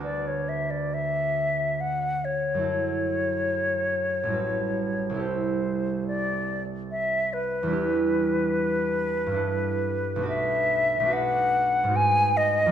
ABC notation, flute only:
X:1
M:3/4
L:1/16
Q:1/4=71
K:D
V:1 name="Flute"
d c e d e4 f2 c2- | c12 | =c4 d3 z e2 B2- | B12 |
e4 f4 ^g2 ^d2 |]